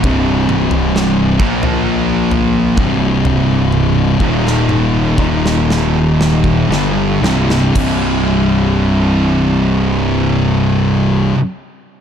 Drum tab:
CC |----------------|----------------|x---------------|
SD |----o-----------|---o---oo-o-o-oo|----------------|
T1 |----------------|o---------------|----------------|
T2 |--o---------o---|----o-----------|----------------|
FT |o--o---o--o---o-|----------------|----------------|
BD |o-----o-----o---|--o---o----o----|o---------------|